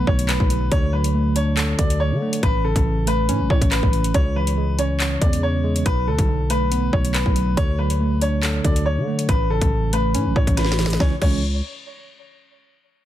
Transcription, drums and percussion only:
0.07 kick medium
0.19 closed hi-hat medium
0.29 clap loud
0.29 closed hi-hat medium
0.40 kick loud
0.50 closed hi-hat medium
0.72 kick loud
0.72 closed hi-hat medium
1.04 closed hi-hat medium
1.36 closed hi-hat medium
1.57 clap loud
1.57 closed hi-hat medium
1.79 kick medium
1.79 closed hi-hat medium
1.90 closed hi-hat medium
2.33 closed hi-hat medium
2.43 kick loud
2.43 closed hi-hat medium
2.76 kick loud
2.76 closed hi-hat medium
3.07 closed hi-hat medium
3.29 closed hi-hat medium
3.50 kick medium
3.61 kick medium
3.61 closed hi-hat medium
3.72 clap loud
3.72 closed hi-hat medium
3.83 kick loud
3.93 closed hi-hat medium
4.04 closed hi-hat medium
4.14 kick loud
4.14 closed hi-hat medium
4.47 closed hi-hat medium
4.79 closed hi-hat medium
5.00 clap loud
5.00 closed hi-hat medium
5.22 kick medium
5.22 closed hi-hat medium
5.33 closed hi-hat medium
5.76 closed hi-hat medium
5.86 kick loud
5.86 closed hi-hat medium
6.19 kick loud
6.19 closed hi-hat medium
6.50 closed hi-hat medium
6.72 closed hi-hat medium
6.93 kick medium
7.05 closed hi-hat medium
7.14 clap loud
7.14 closed hi-hat medium
7.26 kick loud
7.36 closed hi-hat medium
7.57 kick loud
7.57 closed hi-hat medium
7.90 closed hi-hat medium
8.22 closed hi-hat medium
8.43 clap loud
8.43 closed hi-hat medium
8.64 kick medium
8.64 closed hi-hat medium
8.76 closed hi-hat medium
9.19 closed hi-hat medium
9.29 kick loud
9.29 closed hi-hat medium
9.61 kick loud
9.61 closed hi-hat medium
9.93 closed hi-hat medium
10.15 closed hi-hat medium
10.36 kick medium
10.47 kick medium
10.47 closed hi-hat medium
10.57 snare medium
10.57 closed hi-hat medium
10.65 snare medium
10.72 snare medium
10.79 snare medium
10.79 closed hi-hat soft
10.86 snare loud
10.90 snare medium
10.90 closed hi-hat medium
11.00 kick loud
11.00 snare medium
11.22 kick loud
11.22 crash medium

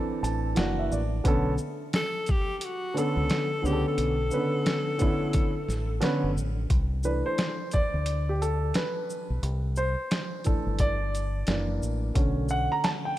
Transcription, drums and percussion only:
0.24 closed hi-hat soft
0.24 shaker soft
0.56 snare loud
0.56 closed hi-hat medium
0.92 shaker medium
1.25 kick medium
1.25 closed hi-hat medium
1.58 shaker soft
1.93 snare loud
1.93 closed hi-hat medium
2.26 kick medium
2.26 closed hi-hat soft
2.26 shaker soft
2.61 closed hi-hat medium
2.97 closed hi-hat medium
2.97 shaker medium
3.30 snare loud
3.30 closed hi-hat medium
3.65 shaker medium
3.98 closed hi-hat medium
4.31 shaker soft
4.66 snare loud
4.66 closed hi-hat medium
4.99 kick medium
4.99 closed hi-hat medium
4.99 shaker soft
5.33 kick medium
5.33 closed hi-hat medium
5.68 snare soft
5.68 shaker medium
6.02 snare loud
6.02 closed hi-hat medium
6.37 shaker medium
6.70 kick medium
6.70 closed hi-hat medium
7.03 shaker soft
7.38 snare loud
7.38 closed hi-hat medium
7.71 kick medium
7.71 closed hi-hat medium
7.71 shaker soft
8.06 closed hi-hat medium
8.42 closed hi-hat soft
8.42 shaker soft
8.74 snare loud
8.74 closed hi-hat medium
9.10 shaker medium
9.43 closed hi-hat medium
9.76 shaker soft
10.11 snare loud
10.11 closed hi-hat medium
10.44 kick medium
10.44 closed hi-hat soft
10.44 shaker soft
10.79 kick medium
10.79 closed hi-hat medium
11.15 closed hi-hat soft
11.15 shaker soft
11.47 snare loud
11.47 closed hi-hat medium
11.83 shaker medium
12.15 kick medium
12.15 closed hi-hat medium
12.48 shaker soft
12.84 snare loud
12.84 closed hi-hat medium

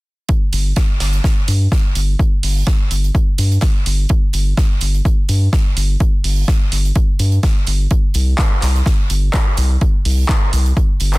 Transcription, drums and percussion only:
0.29 kick loud
0.29 closed hi-hat medium
0.53 closed hi-hat medium
0.53 open hi-hat loud
0.76 kick loud
0.76 snare loud
0.76 closed hi-hat medium
1.00 snare loud
1.00 closed hi-hat medium
1.00 open hi-hat loud
1.13 closed hi-hat soft
1.24 kick loud
1.24 snare medium
1.24 closed hi-hat medium
1.48 closed hi-hat medium
1.48 open hi-hat medium
1.72 kick loud
1.72 snare loud
1.72 closed hi-hat medium
1.95 closed hi-hat medium
1.95 open hi-hat loud
2.19 kick loud
2.19 closed hi-hat medium
2.43 open hi-hat loud
2.43 open hi-hat medium
2.67 kick loud
2.67 snare loud
2.67 closed hi-hat medium
2.91 closed hi-hat medium
2.91 open hi-hat loud
3.04 closed hi-hat soft
3.15 kick loud
3.15 closed hi-hat medium
3.38 closed hi-hat medium
3.38 open hi-hat loud
3.52 closed hi-hat soft
3.61 kick loud
3.61 snare loud
3.61 closed hi-hat medium
3.61 open hi-hat medium
3.86 closed hi-hat medium
3.86 open hi-hat loud
4.09 kick loud
4.09 closed hi-hat medium
4.33 closed hi-hat medium
4.33 open hi-hat loud
4.57 kick loud
4.57 snare loud
4.57 closed hi-hat medium
4.81 closed hi-hat medium
4.81 open hi-hat loud
4.94 closed hi-hat soft
5.05 kick loud
5.05 closed hi-hat medium
5.29 closed hi-hat medium
5.29 open hi-hat loud
5.53 kick loud
5.53 snare loud
5.53 closed hi-hat medium
5.77 closed hi-hat medium
5.77 open hi-hat loud
6.00 kick loud
6.00 closed hi-hat medium
6.24 open hi-hat loud
6.24 open hi-hat medium
6.48 kick loud
6.48 snare loud
6.48 closed hi-hat medium
6.72 snare soft
6.72 closed hi-hat medium
6.72 open hi-hat loud
6.85 closed hi-hat soft
6.95 kick loud
6.95 closed hi-hat medium
7.19 closed hi-hat medium
7.19 open hi-hat loud
7.32 closed hi-hat soft
7.43 kick loud
7.43 snare loud
7.43 closed hi-hat medium
7.43 open hi-hat medium
7.67 closed hi-hat medium
7.67 open hi-hat loud
7.91 kick loud
7.91 closed hi-hat medium
8.14 closed hi-hat medium
8.14 open hi-hat medium
8.38 kick loud
8.38 snare loud
8.38 clap loud
8.38 closed hi-hat medium
8.62 snare loud
8.62 clap soft
8.62 closed hi-hat medium
8.62 open hi-hat loud
8.76 closed hi-hat soft
8.86 kick loud
8.86 snare medium
8.86 closed hi-hat medium
9.10 closed hi-hat medium
9.10 open hi-hat loud
9.33 kick loud
9.33 snare loud
9.33 clap loud
9.33 closed hi-hat medium
9.57 closed hi-hat medium
9.57 open hi-hat loud
9.81 kick loud
9.81 closed hi-hat medium
10.05 open hi-hat medium
10.29 kick loud
10.29 snare loud
10.29 clap loud
10.29 closed hi-hat medium
10.53 closed hi-hat medium
10.53 open hi-hat loud
10.66 closed hi-hat soft
10.77 kick loud
10.77 closed hi-hat medium
11.00 closed hi-hat medium
11.00 open hi-hat loud
11.14 clap soft
11.14 closed hi-hat soft

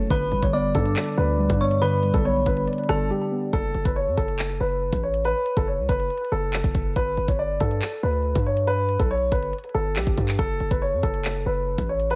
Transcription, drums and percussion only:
0.10 kick loud
0.10 closed hi-hat medium
0.32 closed hi-hat loud
0.43 kick loud
0.75 kick medium
0.75 closed hi-hat medium
0.86 closed hi-hat medium
0.96 clap loud
0.96 closed hi-hat medium
1.50 kick loud
1.71 closed hi-hat medium
1.82 closed hi-hat medium
2.03 closed hi-hat medium
2.14 kick loud
2.46 kick medium
2.46 closed hi-hat medium
2.57 closed hi-hat medium
2.68 closed hi-hat medium
2.73 closed hi-hat medium
2.78 closed hi-hat medium
2.84 closed hi-hat soft
2.89 cross-stick loud
3.53 kick loud
3.53 closed hi-hat medium
3.75 closed hi-hat medium
3.85 kick loud
4.17 kick medium
4.17 closed hi-hat medium
4.28 closed hi-hat medium
4.39 clap loud
4.39 closed hi-hat medium
4.93 kick loud
5.14 closed hi-hat medium
5.25 closed hi-hat medium
5.46 closed hi-hat medium
5.57 kick loud
5.89 kick medium
5.89 closed hi-hat medium
6.00 closed hi-hat medium
6.10 closed hi-hat medium
6.18 closed hi-hat medium
6.25 closed hi-hat medium
6.53 clap loud
6.53 closed hi-hat medium
6.64 kick loud
6.64 closed hi-hat medium
6.75 kick medium
6.75 open hi-hat medium
6.96 kick loud
6.96 closed hi-hat medium
7.17 closed hi-hat medium
7.28 kick loud
7.60 kick medium
7.60 closed hi-hat medium
7.71 closed hi-hat medium
7.82 clap loud
7.82 closed hi-hat medium
8.35 kick loud
8.57 closed hi-hat medium
8.68 closed hi-hat medium
8.89 closed hi-hat medium
9.00 kick medium
9.32 kick medium
9.32 closed hi-hat medium
9.43 closed hi-hat medium
9.53 closed hi-hat medium
9.59 closed hi-hat medium
9.64 closed hi-hat medium
9.69 closed hi-hat soft
9.96 clap loud
9.96 closed hi-hat medium
10.07 kick loud
10.07 closed hi-hat soft
10.17 kick medium
10.17 closed hi-hat medium
10.28 clap medium
10.39 kick loud
10.39 closed hi-hat medium
10.60 closed hi-hat loud
10.71 kick loud
11.03 kick medium
11.03 closed hi-hat medium
11.14 closed hi-hat medium
11.25 clap loud
11.25 closed hi-hat medium
11.78 kick loud
12.00 closed hi-hat medium
12.10 closed hi-hat medium

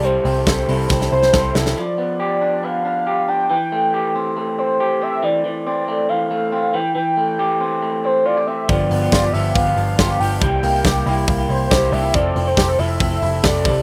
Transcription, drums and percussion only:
0.04 hi-hat pedal medium
0.04 open hi-hat medium
0.25 hi-hat pedal medium
0.25 open hi-hat medium
0.47 kick loud
0.47 snare loud
0.47 hi-hat pedal medium
0.47 open hi-hat medium
0.68 hi-hat pedal medium
0.68 open hi-hat medium
0.90 kick loud
0.90 snare medium
1.01 snare medium
1.23 snare medium
1.33 kick loud
1.33 snare medium
1.55 snare loud
1.66 snare medium
8.69 kick loud
8.69 open hi-hat medium
8.91 hi-hat pedal medium
8.91 open hi-hat medium
9.12 kick loud
9.12 snare loud
9.12 hi-hat pedal medium
9.12 open hi-hat medium
9.34 hi-hat pedal medium
9.34 open hi-hat medium
9.55 kick loud
9.55 hi-hat pedal medium
9.55 open hi-hat medium
9.77 hi-hat pedal medium
9.77 open hi-hat medium
9.99 kick loud
9.99 snare loud
9.99 hi-hat pedal medium
9.99 open hi-hat medium
10.20 hi-hat pedal medium
10.20 open hi-hat medium
10.41 kick loud
10.41 hi-hat pedal medium
10.41 open hi-hat medium
10.63 hi-hat pedal medium
10.63 open hi-hat medium
10.85 kick loud
10.85 snare loud
10.85 hi-hat pedal medium
10.85 open hi-hat medium
11.07 hi-hat pedal medium
11.07 open hi-hat medium
11.28 kick loud
11.28 hi-hat pedal medium
11.28 open hi-hat medium
11.50 hi-hat pedal medium
11.50 open hi-hat medium
11.71 kick loud
11.71 snare loud
11.71 hi-hat pedal medium
11.71 open hi-hat medium
11.93 hi-hat pedal medium
11.93 open hi-hat medium
12.14 kick loud
12.14 hi-hat pedal medium
12.14 open hi-hat medium
12.36 hi-hat pedal medium
12.36 open hi-hat medium
12.57 kick loud
12.57 snare loud
12.57 hi-hat pedal medium
12.57 open hi-hat medium
12.79 hi-hat pedal medium
12.79 open hi-hat medium
13.00 kick loud
13.00 hi-hat pedal medium
13.00 open hi-hat medium
13.22 hi-hat pedal medium
13.22 open hi-hat medium
13.44 kick loud
13.44 snare loud
13.44 hi-hat pedal medium
13.44 open hi-hat medium
13.65 kick loud
13.65 hi-hat pedal medium
13.65 open hi-hat medium

